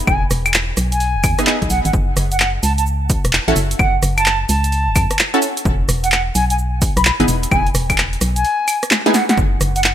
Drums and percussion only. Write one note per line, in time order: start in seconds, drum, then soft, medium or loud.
0.07 kick loud
0.07 claves medium
0.07 shaker soft
0.31 cross-stick medium
0.31 open hi-hat loud
0.31 shaker medium
0.46 closed hi-hat medium
0.46 claves medium
0.46 shaker soft
0.54 clap loud
0.54 shaker soft
0.77 cross-stick medium
0.77 open hi-hat loud
0.77 shaker medium
0.92 closed hi-hat medium
0.92 shaker soft
1.00 open hi-hat medium
1.00 shaker soft
1.24 kick loud
1.24 open hi-hat loud
1.24 claves medium
1.24 shaker medium
1.39 cross-stick medium
1.39 closed hi-hat medium
1.39 shaker soft
1.47 clap loud
1.47 shaker soft
1.62 kick medium
1.62 closed hi-hat soft
1.70 open hi-hat loud
1.70 shaker medium
1.85 closed hi-hat medium
1.85 shaker soft
1.93 kick loud
1.93 shaker soft
2.17 cross-stick medium
2.17 open hi-hat loud
2.17 shaker medium
2.32 closed hi-hat medium
2.32 shaker soft
2.40 clap loud
2.40 shaker soft
2.63 open hi-hat loud
2.63 shaker medium
2.78 closed hi-hat medium
2.78 shaker soft
2.86 shaker soft
3.10 kick loud
3.10 open hi-hat loud
3.10 shaker medium
3.25 cross-stick medium
3.25 closed hi-hat medium
3.25 shaker soft
3.33 clap loud
3.33 shaker soft
3.48 closed hi-hat medium
3.56 open hi-hat loud
3.56 shaker medium
3.71 closed hi-hat medium
3.71 shaker soft
3.79 kick loud
3.79 claves medium
3.79 shaker soft
4.03 cross-stick medium
4.03 open hi-hat loud
4.03 shaker medium
4.18 closed hi-hat medium
4.18 claves medium
4.18 shaker soft
4.26 clap loud
4.26 shaker soft
4.49 open hi-hat loud
4.49 shaker medium
4.64 closed hi-hat medium
4.64 shaker soft
4.72 open hi-hat medium
4.72 shaker soft
4.96 kick loud
4.96 open hi-hat loud
4.96 claves medium
4.96 shaker medium
5.11 cross-stick medium
5.11 closed hi-hat medium
5.11 shaker soft
5.19 clap loud
5.19 shaker soft
5.34 closed hi-hat medium
5.42 open hi-hat loud
5.42 shaker medium
5.57 closed hi-hat medium
5.57 shaker soft
5.65 kick loud
5.65 shaker soft
5.89 cross-stick medium
5.89 open hi-hat loud
5.89 shaker medium
6.04 closed hi-hat medium
6.04 shaker soft
6.12 clap loud
6.12 shaker soft
6.35 open hi-hat loud
6.35 shaker medium
6.50 closed hi-hat medium
6.50 shaker soft
6.58 shaker soft
6.82 kick loud
6.82 open hi-hat loud
6.82 shaker medium
6.97 cross-stick medium
6.97 closed hi-hat medium
6.97 shaker soft
7.05 clap loud
7.05 shaker soft
7.20 closed hi-hat medium
7.28 open hi-hat loud
7.28 shaker medium
7.43 closed hi-hat medium
7.43 shaker soft
7.51 kick loud
7.51 claves medium
7.51 shaker soft
7.67 closed hi-hat soft
7.75 cross-stick medium
7.75 open hi-hat loud
7.75 shaker medium
7.90 kick medium
7.90 closed hi-hat medium
7.90 claves medium
7.90 shaker soft
7.98 clap loud
7.98 shaker soft
8.13 closed hi-hat soft
8.21 cross-stick medium
8.21 open hi-hat loud
8.21 shaker medium
8.36 closed hi-hat medium
8.36 shaker soft
8.45 open hi-hat medium
8.45 shaker soft
8.68 open hi-hat loud
8.68 claves medium
8.68 shaker medium
8.83 cross-stick medium
8.83 closed hi-hat medium
8.83 shaker soft
8.91 snare medium
8.91 clap loud
8.91 shaker soft
9.06 snare medium
9.06 closed hi-hat medium
9.14 snare medium
9.14 open hi-hat loud
9.14 shaker medium
9.29 snare medium
9.29 closed hi-hat medium
9.29 shaker soft
9.38 kick loud
9.38 shaker soft
9.61 cross-stick medium
9.61 open hi-hat loud
9.61 shaker medium
9.76 closed hi-hat medium
9.76 shaker soft
9.84 clap loud
9.84 shaker soft